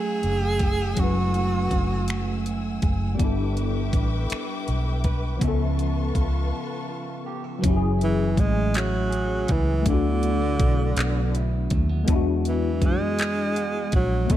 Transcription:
0.00 0.90 F#3 medium
0.00 0.96 F#3 medium
0.00 0.92 A3 soft
0.00 1.33 A3 medium
0.00 3.15 A3 medium
0.00 0.93 C#4 medium
0.00 0.23 E4 medium
0.00 0.94 E4 soft
0.00 0.96 G#4 medium
0.00 1.01 G#4 loud
0.00 3.15 F#5 medium
0.00 3.15 G#5 medium
0.00 3.16 E6 medium
0.23 0.93 F#1 medium
0.23 0.41 D4 medium
0.23 closed hi-hat soft
0.41 1.71 E4 soft
0.59 2.81 G#4 medium
0.59 kick medium
0.59 closed hi-hat soft
0.93 3.13 F#3 medium
0.93 1.03 G#3 soft
0.97 1.67 F#1 medium
0.97 3.19 F#3 medium
0.97 3.16 C#4 medium
0.97 2.47 F#4 loud
0.97 kick medium
0.97 closed hi-hat medium
1.01 3.18 A3 soft
1.01 3.17 E4 medium
1.01 3.18 B4 medium
1.34 2.08 A3 medium
1.34 closed hi-hat soft
1.71 2.78 F#1 medium
1.71 1.90 D4 medium
1.71 kick medium
1.71 closed hi-hat medium
1.90 2.44 E4 medium
2.08 3.19 A3 medium
2.08 finger snap medium
2.08 closed hi-hat medium
2.46 3.56 E4 medium
2.46 closed hi-hat soft
2.82 3.16 F#1 medium
2.82 3.27 G#4 medium
2.82 kick medium
2.82 closed hi-hat medium
3.14 5.35 G3 medium
3.14 5.36 B3 medium
3.19 3.90 G1 medium
3.19 5.41 G3 medium
3.19 5.38 D4 medium
3.19 5.39 E4 medium
3.19 5.40 B4 medium
3.19 5.40 E5 medium
3.19 5.40 G5 medium
3.19 5.40 D6 medium
3.19 kick medium
3.19 closed hi-hat medium
3.25 5.40 A4 medium
3.57 4.30 D4 medium
3.57 closed hi-hat soft
3.93 4.27 A1 medium
3.93 4.68 E4 medium
3.93 kick medium
3.93 closed hi-hat soft
4.30 5.49 D4 medium
4.30 finger snap medium
4.30 muted fingered electric bass stroke soft
4.30 closed hi-hat medium
4.68 5.38 B1 medium
4.68 6.14 E4 medium
4.68 closed hi-hat soft
5.04 6.17 B4 medium
5.04 kick medium
5.04 closed hi-hat soft
5.36 7.57 F3 medium
5.36 7.58 B3 medium
5.41 6.12 C#2 medium
5.41 7.63 C#3 medium
5.41 7.60 C#4 medium
5.41 7.62 F4 medium
5.41 7.62 B4 medium
5.41 7.61 E5 medium
5.41 7.61 A5 medium
5.41 7.62 C#6 medium
5.41 kick medium
5.41 closed hi-hat medium
5.48 7.63 A4 medium
5.77 6.51 B3 medium
5.77 closed hi-hat soft
6.14 6.51 C#2 medium
6.14 6.87 F4 medium
6.14 kick medium
6.14 closed hi-hat soft
6.52 7.71 B3 medium
6.89 7.71 F4 medium
7.26 7.44 G4 medium
7.44 7.70 A4 soft
7.59 9.81 E3 medium
7.59 9.79 F#3 medium
7.59 10.59 F#3 medium
7.64 8.34 F#1 loud
7.64 9.82 C#4 medium
7.64 9.83 E4 medium
7.64 kick loud
7.64 closed hi-hat medium
7.70 7.73 G4 medium
7.76 9.88 G#4 medium
7.99 8.73 E4 medium
7.99 closed hi-hat soft
8.03 8.41 E3 medium
8.37 9.45 A1 medium
8.37 8.78 G#3 loud
8.37 10.22 A3 medium
8.37 kick medium
8.37 closed hi-hat medium
8.73 9.53 F#3 loud
8.73 9.46 E4 medium
8.73 clap loud
8.73 closed hi-hat medium
9.10 9.92 G#4 medium
9.10 closed hi-hat soft
9.47 9.83 C#2 medium
9.47 10.63 E4 medium
9.47 kick medium
9.47 closed hi-hat medium
9.51 9.87 E3 loud
9.81 12.07 D3 medium
9.81 12.02 A3 medium
9.81 12.03 B3 medium
9.86 10.56 D2 loud
9.86 11.68 D3 loud
9.86 12.05 D4 medium
9.86 12.06 E4 medium
9.86 kick loud
9.86 closed hi-hat medium
9.93 12.07 F#4 medium
10.22 10.41 A3 medium
10.22 closed hi-hat soft
10.41 10.95 B3 soft
10.60 10.93 B1 medium
10.60 12.81 F#3 medium
10.60 kick medium
10.60 closed hi-hat medium
10.96 11.67 B1 loud
10.96 11.70 B3 medium
10.96 clap loud
10.96 closed hi-hat medium
11.34 12.48 E4 medium
11.34 closed hi-hat medium
11.70 12.05 D#2 medium
11.70 11.89 A3 medium
11.70 kick medium
11.70 closed hi-hat medium
11.89 12.15 B3 medium
12.04 14.30 E3 medium
12.04 14.24 G#3 medium
12.04 14.25 B3 medium
12.04 closed hi-hat medium
12.08 12.82 E2 loud
12.08 14.27 D4 medium
12.08 14.28 E4 medium
12.08 kick loud
12.15 14.30 F#4 medium
12.45 12.87 E3 medium
12.45 13.18 D4 medium
12.45 closed hi-hat soft
12.82 13.89 F#2 medium
12.82 14.30 G#3 medium
12.82 13.94 G#3 loud
12.82 kick medium
12.82 closed hi-hat medium
13.19 13.93 D4 medium
13.19 clap loud
13.19 closed hi-hat medium
13.56 14.37 F#4 medium
13.56 closed hi-hat soft
13.92 14.27 A#1 medium
13.92 14.34 F#3 loud
13.92 14.37 D4 medium
13.92 kick medium
13.92 closed hi-hat medium
14.26 14.37 A3 medium
14.26 14.37 B3 medium
14.30 14.37 B1 loud
14.30 14.37 A3 loud
14.30 14.37 B3 medium
14.30 14.37 C#5 medium
14.30 kick loud
14.30 closed hi-hat medium
14.34 14.37 D4 medium

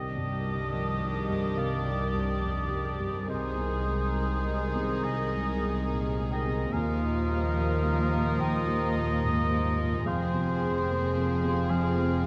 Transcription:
0.00 1.54 C2 soft
0.00 3.25 C2 soft
0.00 1.57 C3 soft
0.00 3.25 D#3 medium
0.00 3.25 D4 soft
0.00 3.25 G4 soft
0.00 1.60 D#5 medium
0.00 1.54 G5 medium
0.00 3.25 D#6 medium
0.11 3.32 D#3 soft
0.17 0.62 G2 soft
0.32 0.72 G4 soft
0.45 0.90 G3 soft
0.53 3.32 D3 soft
0.74 1.02 F3 soft
0.74 1.15 G4 soft
0.94 1.30 G#3 soft
1.01 1.46 G3 soft
1.16 1.99 G4 soft
1.29 1.75 G2 soft
1.36 3.06 C5 soft
1.57 3.24 C2 soft
1.57 3.28 C3 soft
1.57 3.29 D5 medium
1.57 3.24 F5 medium
1.85 2.31 G3 soft
2.00 2.42 G4 soft
2.14 2.59 G2 soft
2.42 2.71 F2 soft
2.42 2.84 G4 soft
2.64 3.01 G#3 soft
2.70 3.17 G3 soft
2.85 3.32 G4 soft
2.99 3.29 G2 soft
3.07 4.81 C5 soft
3.28 5.00 C2 soft
3.28 6.69 C2 soft
3.28 5.03 C3 soft
3.28 6.69 D#3 medium
3.28 6.72 D#4 soft
3.28 6.41 G#4 soft
3.28 6.70 G#4 soft
3.28 5.05 C5 medium
3.28 5.00 D#5 medium
3.28 6.42 D#6 soft
3.51 3.92 C4 soft
3.58 4.04 C3 soft
3.72 4.13 G#4 soft
3.86 4.33 G#3 soft
3.94 5.25 C4 soft
4.14 4.44 G3 soft
4.14 4.59 G#4 soft
4.38 4.76 A#4 soft
4.45 4.93 G#3 soft
4.60 5.47 G#4 soft
4.74 5.22 C3 soft
4.82 6.51 C5 soft
5.03 6.69 C2 soft
5.03 6.77 C3 soft
5.03 5.90 D#5 medium
5.03 5.86 G#5 medium
5.26 5.67 C4 soft
5.33 5.79 G#3 soft
5.48 5.88 G#4 soft
5.62 6.06 C3 soft
5.68 6.76 C4 soft
5.89 6.18 A#2 soft
5.89 6.30 G#4 soft
6.10 6.46 A#4 soft
6.18 6.62 G#3 soft
6.31 6.77 G#4 soft
6.31 6.74 D#5 medium
6.31 6.70 G5 medium
6.46 6.74 C3 soft
6.52 6.77 C5 soft
6.73 10.02 D#2 medium
6.73 8.36 D#2 soft
6.73 8.37 D#3 soft
6.73 10.05 F3 medium
6.73 10.02 D#4 soft
6.73 10.02 F4 medium
6.73 10.06 A#4 soft
6.73 8.42 F5 medium
6.73 8.35 G#5 medium
6.73 10.09 D#6 medium
6.94 7.34 A#3 soft
7.01 7.46 A#2 soft
7.15 7.55 F4 soft
7.30 7.74 G3 soft
7.36 8.59 A#3 soft
7.57 7.84 F3 soft
7.77 8.12 G3 soft
7.84 8.28 G3 soft
7.98 8.79 F4 soft
8.12 8.56 A#2 soft
8.18 9.84 A#4 soft
8.38 10.02 D#2 soft
8.38 10.09 D#3 soft
8.38 10.06 D#5 medium
8.38 10.02 G5 medium
8.67 9.12 G3 soft
8.80 9.21 F4 soft
8.95 9.40 A#2 soft
9.01 10.09 A#3 soft
9.22 9.51 G#2 soft
9.22 9.63 F4 soft
9.44 9.79 G4 soft
9.51 9.95 G3 soft
9.64 12.27 F4 soft
9.79 10.06 A#2 soft
9.85 10.09 A#4 soft
10.05 12.27 F1 medium
10.05 12.27 F2 medium
10.05 11.66 F2 medium
10.05 11.68 F3 medium
10.05 12.27 F3 medium
10.05 12.27 C4 medium
10.05 12.27 G#4 medium
10.05 11.72 C5 medium
10.05 11.66 F5 medium
10.05 12.27 C6 medium
10.26 10.65 C4 soft
10.34 10.78 C3 soft
10.47 10.86 G#4 soft
10.61 11.05 C4 soft
10.66 11.88 C4 soft
10.88 11.16 A#3 soft
10.88 11.27 G#4 soft
11.08 11.43 A#4 soft
11.16 11.59 C4 soft
11.28 12.09 G#4 soft
11.44 11.87 C3 soft
11.48 12.27 C5 medium
11.69 12.27 F2 soft
11.69 12.27 F3 medium
11.69 12.27 F5 medium
11.69 12.27 G#5 medium
11.90 12.27 C4 soft
11.97 12.27 C4 soft
12.10 12.27 G#4 soft

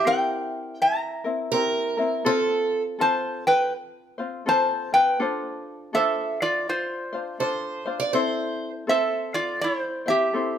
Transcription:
0.05 1.26 C4 medium
0.05 1.24 E4 medium
0.05 1.25 G4 medium
0.05 0.76 A#4 medium
0.05 1.23 A#4 medium
0.05 0.81 G5 medium
0.82 1.96 E5 medium
0.82 1.96 A#5 medium
1.24 1.52 C4 soft
1.24 1.53 E4 soft
1.24 1.52 A#4 soft
1.52 1.99 C4 medium
1.52 1.97 E4 medium
1.52 1.98 G4 medium
1.52 2.26 A#4 medium
1.52 1.96 A#4 medium
1.97 2.24 C4 medium
1.97 2.25 E4 medium
1.97 2.26 A#4 medium
2.25 2.99 C4 medium
2.25 3.00 F4 loud
2.25 2.99 A4 medium
2.25 2.82 A4 loud
2.25 2.98 C5 medium
2.99 4.20 C4 medium
2.99 4.19 F4 medium
2.99 4.18 A4 medium
2.99 3.44 C5 medium
2.99 3.46 A5 loud
3.47 3.72 B4 medium
3.47 3.72 G5 medium
4.18 4.45 C4 soft
4.18 4.46 F4 medium
4.18 4.46 C5 medium
4.46 4.92 C4 medium
4.46 4.91 F4 medium
4.46 4.92 A4 medium
4.46 4.93 C5 medium
4.46 4.90 C5 medium
4.46 4.93 A5 loud
4.92 5.20 C4 soft
4.92 5.19 F4 soft
4.92 5.20 B4 medium
4.92 5.19 G5 medium
5.20 5.93 D4 medium
5.20 5.93 F4 medium
5.20 5.93 A4 medium
5.20 5.94 C5 medium
5.93 7.13 D4 medium
5.93 7.13 F4 medium
5.93 7.39 A4 medium
5.93 6.37 A4 medium
5.93 7.12 C5 medium
5.93 6.41 E5 loud
6.42 6.67 F4 medium
6.42 6.67 D5 loud
6.69 7.38 F4 medium
6.69 7.38 C5 medium
7.13 7.39 D4 soft
7.13 7.39 F4 soft
7.13 7.40 C5 medium
7.40 7.86 D4 medium
7.40 7.85 F4 medium
7.40 7.86 A4 medium
7.40 7.99 C5 medium
7.40 7.84 C5 medium
7.86 8.14 D4 soft
7.86 8.14 F4 medium
7.86 8.13 C5 medium
8.00 8.13 D5 medium
8.13 8.87 C4 medium
8.13 8.87 E4 medium
8.13 8.87 A4 medium
8.13 8.69 C5 medium
8.13 8.89 C5 medium
8.87 10.07 C4 medium
8.87 10.07 A4 medium
8.87 9.32 A4 medium
8.87 10.06 C5 medium
8.87 9.31 E5 loud
9.34 9.60 F4 medium
9.34 9.61 D5 medium
9.61 10.05 E4 medium
9.61 9.79 C#5 medium
9.79 10.08 C5 medium
10.06 10.33 C4 soft
10.06 10.33 E4 soft
10.06 10.33 C5 soft
10.06 10.58 E5 medium
10.10 10.58 G4 medium
10.33 10.58 C4 medium
10.33 10.58 E4 medium
10.33 10.58 A4 medium
10.33 10.58 C5 medium

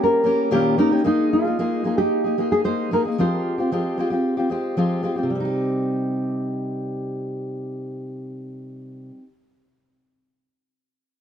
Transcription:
0.00 0.22 A#3 soft
0.00 0.23 C#4 soft
0.00 0.24 G4 soft
0.00 0.25 A#4 soft
0.00 0.51 A#4 medium
0.24 0.51 A#3 medium
0.24 0.51 C#4 medium
0.24 0.51 G4 medium
0.24 0.51 A#4 medium
0.51 0.78 A#2 medium
0.51 0.78 D#3 medium
0.51 0.77 A#3 medium
0.51 0.77 C#4 medium
0.51 0.78 F4 medium
0.51 0.78 G4 medium
0.51 0.79 A#4 medium
0.78 0.91 A#3 medium
0.78 0.91 C#4 medium
0.78 1.05 D#4 medium
0.78 0.91 G4 medium
0.78 0.90 A#4 medium
0.91 1.03 A#3 soft
0.91 1.04 C#4 medium
0.91 1.05 G4 medium
0.91 1.05 A#4 medium
1.04 1.44 G#3 medium
1.04 1.45 A#3 medium
1.04 1.45 D#4 medium
1.04 1.33 D#4 medium
1.04 1.43 G#4 medium
1.33 2.01 F4 medium
1.45 1.58 A#3 soft
1.45 1.59 D#4 soft
1.45 1.58 G#4 medium
1.59 1.83 G#3 medium
1.59 1.84 A#3 medium
1.59 1.85 D#4 medium
1.59 1.86 G#4 medium
1.84 1.98 G#3 soft
1.84 1.98 A#3 medium
1.84 1.98 D#4 medium
1.84 1.96 G#4 medium
1.97 2.25 A#3 soft
1.97 2.25 D#4 soft
1.97 2.51 G4 medium
1.97 2.23 G#4 soft
2.24 2.37 A#3 soft
2.24 2.38 D#4 soft
2.24 2.38 G#4 soft
2.38 2.63 G#3 medium
2.38 2.64 A#3 medium
2.38 2.65 D#4 medium
2.38 2.65 G#4 medium
2.52 2.65 G#4 medium
2.64 2.90 G#3 medium
2.64 2.91 A#3 medium
2.64 2.92 D#4 medium
2.64 2.92 G#4 medium
2.64 2.92 C5 medium
2.91 3.04 G#3 medium
2.91 3.05 A#3 medium
2.91 3.05 D#4 medium
2.91 3.04 G#4 medium
2.91 3.00 A#4 medium
3.05 3.19 A#3 soft
3.05 3.19 D#4 soft
3.05 3.18 G#4 soft
3.18 3.58 F3 medium
3.18 3.58 G#3 medium
3.18 3.58 C4 medium
3.18 3.58 F4 medium
3.18 3.57 G4 medium
3.18 4.74 C5 medium
3.58 3.71 C4 soft
3.58 3.72 F4 soft
3.58 3.71 G4 soft
3.72 3.98 F3 medium
3.72 3.96 G#3 medium
3.72 3.98 C4 medium
3.72 3.98 F4 medium
3.72 3.99 G4 medium
3.98 4.11 G#3 medium
3.98 4.11 C4 medium
3.98 4.10 F4 medium
3.98 4.09 G4 medium
4.10 4.38 C4 soft
4.10 4.37 F4 soft
4.10 4.36 G4 soft
4.37 4.50 C4 soft
4.37 4.51 F4 soft
4.37 4.50 G4 medium
4.50 4.76 G#3 medium
4.50 4.76 C4 medium
4.50 4.77 F4 medium
4.50 4.78 G4 medium
4.77 5.03 F3 medium
4.77 5.02 G#3 medium
4.77 5.02 C4 medium
4.77 5.03 F4 medium
4.77 5.04 G4 medium
5.03 5.16 G#3 medium
5.03 5.17 C4 medium
5.03 5.16 F4 medium
5.03 5.14 G4 medium
5.16 5.31 C4 soft
5.16 5.30 F4 soft
5.16 5.29 G4 soft
5.23 9.10 C3 medium
5.30 9.17 G3 medium
5.35 9.23 C4 medium
5.40 9.28 D#4 medium
5.45 9.32 G4 medium

